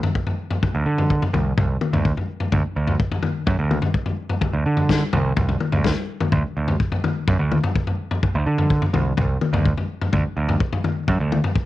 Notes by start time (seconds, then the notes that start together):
0.03 floor tom
0.15 kick
0.27 floor tom
0.51 floor tom
0.63 kick, floor tom
0.75 D2
0.86 D3
0.98 floor tom
1.10 kick
1.22 floor tom
1.33 C2, floor tom, mid tom
1.58 C2, kick, floor tom
1.81 mid tom
1.93 D2, floor tom
2.05 kick
2.17 floor tom
2.40 floor tom
2.52 D2, kick, floor tom
2.76 D2
2.87 floor tom
3.00 kick
3.12 floor tom
3.23 floor tom, mid tom
3.47 F#2, kick, floor tom
3.59 D2
3.71 mid tom
3.82 floor tom
3.94 kick
4.06 floor tom
4.29 floor tom
4.41 kick, floor tom
4.54 D2
4.66 D3
4.77 floor tom
4.89 kick, snare
5.13 C2, floor tom, mid tom
5.37 C2, kick, floor tom
5.49 floor tom
5.60 mid tom
5.72 D2, floor tom
5.84 kick, snare
6.20 floor tom, mid tom
6.32 D2, kick, floor tom
6.57 D2
6.68 floor tom
6.80 kick
6.92 floor tom
7.04 floor tom, mid tom
7.28 F#2, kick, floor tom
7.39 D2
7.52 mid tom
7.64 floor tom
7.76 kick
7.87 floor tom
8.11 floor tom
8.23 kick, floor tom
8.35 D2
8.46 D3
8.58 floor tom
8.70 kick
8.82 floor tom
8.93 C2, floor tom, mid tom
9.17 C2, kick, floor tom
9.41 mid tom
9.53 D2, floor tom
9.65 kick
9.78 floor tom
10.01 floor tom
10.13 D2, kick, floor tom
10.37 D2
10.49 floor tom
10.60 kick
10.73 floor tom
10.84 floor tom, mid tom
11.08 F#2, kick, floor tom
11.20 D2
11.32 mid tom
11.44 floor tom
11.56 kick